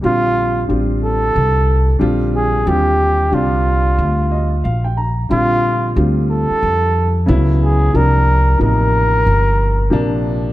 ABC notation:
X:1
M:4/4
L:1/16
Q:"Swing 16ths" 1/4=91
K:Bb
V:1 name="Flugelhorn"
F4 z2 A6 z2 _A2 | G4 F8- F2 z2 | F4 z2 A6 z2 _A2 | B4 B8- B2 z2 |]
V:2 name="Upright piano"
z16 | z8 z2 e2 f g b2 | z16 | z16 |]
V:3 name="Upright piano" clef=bass
[D,G,CF]4 [D,G,CF]6- [D,G,CF] z [D,G,CF]4 | [D,G,CF]4 [D,G,CD]6- [D,G,CD] z4 z | [D,G,CF]4 [D,G,CF]6- [D,G,CF] z [_D,_G,_C_F]4 | [C,F,B,D]4 [C,F,B,E]6- [C,F,B,E] z [C,F,B,D]4 |]
V:4 name="Upright bass" clef=bass
B,,,4 A,,,4 C,,4 B,,,4 | E,,4 C,,4 D,,4 B,,,4 | B,,,4 D,,3 z F,,4 _D,,4 | C,,4 A,,,4 G,,,4 B,,,4 |]